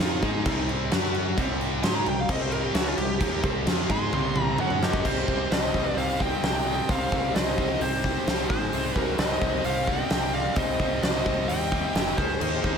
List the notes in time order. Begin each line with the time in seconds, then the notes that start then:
Already playing: D#4
0.00 F2 F3 C4 F4, snare
0.22 G#2 G#3 D#4 G#4, kick, crash
0.46 C2 C3 G3 C4, kick, crash
0.69 crash
0.91 F#2 F#3 C#4 F#4, snare, crash
1.15 crash
1.38 C2 C3 G3 C4, kick, crash
1.61 crash
1.83 G#2 G#3 D#4 G#4 C6, snare, crash
1.96 A#5
2.06 C2 C3 G3 G5, crash
2.20 F5
2.29 C2 C3 G3 C4 D#5, kick, crash
2.41 C5
2.52 A#4, crash
2.64 G4
2.74 C#2 C#3 G#3 C#4 F#4, snare, crash
2.88 F4
2.98 C2 C3 G3 G4, crash
3.21 D#2 D#3 A#3 D#4, kick, crash
3.43 C2 C3 G3 C4, kick, crash
3.66 F2 F3 C4 F4, snare, crash
3.90 G#2 G#3 D#4 G#4 C6, kick, crash
4.12 C2 C3 G3 C4, high tom
4.36 mid tom
4.43 A#5
4.58 F#2 F#3 C#4 F#4 F#5, mid tom
4.70 mid tom
4.83 G4 C5 D#5, snare
4.93 kick
5.05 C2 C3 G3 C4 D#4, kick, crash
5.28 C2 C3 G3 C4, kick
5.51 C2 C3 G3 C4 C5 D#5, snare, open hi-hat
5.74 C2 C3 G3 C4, kick
5.96 C2 C3 G3 C4 C5 F5, open hi-hat
6.20 C3 G3 C4 D#5 G5, kick
6.42 C2 C3 G3 C4, snare, open hi-hat
6.66 C3 G3 C4 D#5 G5
6.89 C2 C3 G3 C4 C5 F5, kick, open hi-hat
6.93 D#4
7.12 C2 C3 G3 C4, kick
7.35 C2 C3 G3 C4 C5 D#5, snare, open hi-hat
7.58 C2 C3 G3 C4, kick
7.81 C2 C3 G3 C4 G4 C5, open hi-hat
8.04 C3 G3 C4, kick
8.27 C2 C3 G3 C4, snare, open hi-hat
8.49 G#1 G#2 D#3 G#3 G#4 C5, kick
8.73 C2 C3 G3 C4 D#4, open hi-hat
8.96 C2 C3 G3 C4 F#4 A#4, kick
9.18 C2 C3 G3 C4 C5 D#5, snare, open hi-hat
9.42 C2 C3 G3 C4, kick
9.63 C2 C3 G3 C4 C5 F5, open hi-hat
9.87 C3 G3 C4 D#5 G5, kick
10.10 C2 C3 G3 C4, snare, open hi-hat
10.33 C3 G3 C4 D5 F5
10.56 C2 C3 G3 C4 D#4 C5 D#5, kick, open hi-hat
10.79 C2 C3 G3 C4, kick
11.03 C2 C3 G3 C4 C5 D#5, snare, open hi-hat
11.25 C2 C3 G3 C4, kick
11.48 D#2 C3 G3 C4 D#5 G5, open hi-hat
11.72 C3 G3 C4, kick
11.95 F1 F2 C3 F3, snare, open hi-hat
12.17 C#2 C#3 G#3 C#4 G#4 C5, kick
12.41 D#2 D#3 A#3 D#4 G4, crash
12.64 D#2 D#3 A#3 D#4, kick